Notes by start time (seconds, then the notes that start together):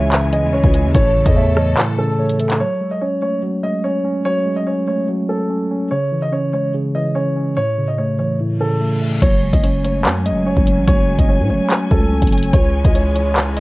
Already playing: C#2 C#3 E3 G#3 C#4 C#5 E5 G#5
0.12 C#3, clap, closed hi-hat
0.32 E3 D#5, closed hi-hat
0.43 E2
0.53 C#2 C#4 C#5
0.64 C#2, kick
0.74 C#4, closed hi-hat
0.84 D#2
0.94 A1 A2 A3 A4 C#5, kick, closed hi-hat
1.15 C#3
1.26 E2 D#5, kick, closed hi-hat
1.36 A3 C#5 E5
1.57 E3 C#5 D#5, cross-stick
1.77 A2, clap, closed hi-hat
1.98 C#3 A4
2.18 A3 C#5
2.29 closed hi-hat
2.39 A3 A4, closed hi-hat
2.50 clap, closed hi-hat
2.60 F#3 C#5
2.81 G#3
2.91 D#5
3.01 C#4 C#5
3.22 A3 C#5
3.43 F#3
3.63 G#3 D#5
3.84 C#4 C#5
4.05 C#4
4.25 F#3 C#5
4.46 G#3
4.57 D#5
4.67 C#4 C#5
4.87 A3 C#5
5.08 F#3
5.29 A4
5.50 C#4
5.71 C#4
5.91 C#3 C#5
6.12 E3
6.22 D#5
6.32 C#4 C#5
6.53 G#3 C#5
6.74 C#3
6.95 E3 D#5
7.15 C#4 C#5
7.36 C#4
7.57 A2 C#5
7.77 C#3
7.88 D#5
7.98 A3 C#5
8.19 E3 C#5
8.39 A2, reverse cymbal
8.60 C#3 A4
8.81 A3
9.02 A3
9.22 F#1 F#3 C#4 C#5 G#5, kick, closed hi-hat, crash
9.43 G#3
9.53 F#1 D#5, kick, closed hi-hat
9.63 C#4 C#5, closed hi-hat
9.84 A3 C#5, closed hi-hat
10.05 F#2 F#3, clap, closed hi-hat
10.26 G#3 D#5, closed hi-hat
10.31 F#1
10.46 C#4 C#5
10.57 F#1, kick
10.67 C#4, closed hi-hat
10.77 A1
10.88 F#1 F#3 C#5, kick, closed hi-hat
11.08 G#3
11.19 F#1 D#5, kick, closed hi-hat
11.29 C#4 C#5
11.40 A2
11.49 F#1 A3 C#5
11.70 F#3, clap, closed hi-hat
11.91 C#2 A4, kick
12.12 C#4
12.22 F#1, kick, closed hi-hat
12.27 closed hi-hat
12.33 C#4, closed hi-hat
12.38 closed hi-hat
12.43 closed hi-hat
12.53 C#2 E3 G#3 C#5, kick, closed hi-hat
12.84 C#2 D#5, kick, closed hi-hat
12.94 C#5, closed hi-hat
13.15 C#5, closed hi-hat
13.36 clap, closed hi-hat
13.57 D#5, closed hi-hat